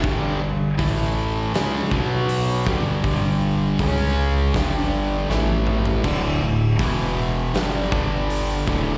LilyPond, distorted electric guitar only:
\new Staff \with { instrumentName = "Distorted electric guitar" } { \clef bass \time 4/4 \key g \lydian \tempo 4 = 80 <g, d g>8 <g, d>8 <a, e a>4 <cis gis cis'>8 <b, fis b>4 <g, d g>8 | <g, d g>4 <cis gis cis'>4 <g, d g>4 <a, e a>4 | <d, a, d>8 <d, a,>8 <e, b, e>4 <g, d g>8 <g, d g>4 <d, a, d>8 | }